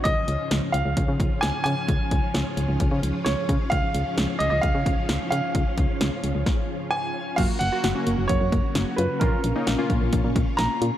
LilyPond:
<<
  \new Staff \with { instrumentName = "Grand piano" } { \time 4/4 \key des \mixolydian \tempo 4 = 131 ees''4 r8 f''4. aes''8 aes''8~ | aes''2~ aes''8 r8 des''4 | f''4. ees''16 ees''16 f''4. f''8~ | f''2. aes''4 |
f''8 ges''4. des''4. ces''8 | bes'4. r4. bes''4 | }
  \new Staff \with { instrumentName = "Synth keys" } { \time 4/4 \key des \mixolydian r1 | r1 | r1 | r1 |
<bes f' ges'>8 r16 <bes f' ges'>16 r16 <bes des' ges'>4 r4. r16 | <bes des' f'>8 r16 <bes des' ees'>16 r16 <bes des' f'>4 r4. r16 | }
  \new Staff \with { instrumentName = "Synth arpeggio sound" } { \time 4/4 \key des \mixolydian r1 | r1 | r1 | r1 |
ges8 r8 ges'8 bes8 ges8 bes8 r8 f'8 | f8 r8 f''8 bes8 f8 bes8 r8 f'8 | }
  \new Staff \with { instrumentName = "String machine" } { \clef bass \time 4/4 \key des \mixolydian <aes, des f des' f'>1~ | <aes, des f des' f'>1~ | <aes, des f des' f'>1~ | <aes, des f des' f'>1 |
<des ges bes ges'>1 | <bes, des' f'>1 | }
  \new Staff \with { instrumentName = "FM bass" } { \clef bass \time 4/4 \key des \mixolydian des,16 r16 des,16 r16 des,16 r16 des,16 des,16 des,16 des16 des,16 r16 des,16 r16 des16 r16 | des,16 r16 des,16 r16 des,16 r16 des,16 des,16 des,16 des16 des,16 r16 des,16 r16 des16 r16 | des,16 r16 des,16 r16 des,16 r16 des,16 des,16 des,16 des16 des,16 r16 des,16 r16 des16 r16 | des,16 r16 des,16 r16 des,16 r16 des,16 des,16 r2 |
ges,,16 r16 ges,,16 r16 ges,,16 r16 ges,,16 ges,,16 ges,,16 ges,16 ges,,16 r16 ges,,16 r16 ges,16 r16 | bes,,16 r16 bes,,16 r16 bes,,16 r16 bes,,16 bes,,16 bes,,16 bes,16 bes,,16 r16 bes,,16 r16 bes,16 r16 | }
  \new DrumStaff \with { instrumentName = "Drums" } \drummode { \time 4/4 <hh bd>8 hh8 <hh sn>8 hh8 <hh bd>8 <hh bd>8 <hh sn>8 hh8 | <hh bd>8 <hh bd>8 <hh sn>8 hh8 <hh bd>8 hh8 <hh sn>8 <hh bd>8 | <hh bd>8 hh8 <hh sn>8 hh8 <hh bd>8 <hh bd>8 <hh sn>8 hh8 | <hh bd>8 <hh bd>8 <hh sn>8 hh8 <bd sn>4 r4 |
<cymc hh bd>8 hh8 <hh sn>8 hh8 <hh bd>8 <hh bd>8 <hh sn>8 hh8 | <hh bd>8 hh8 <hh sn>8 <hh bd>8 <hh bd>8 <hh bd>8 <hh sn>8 hh8 | }
>>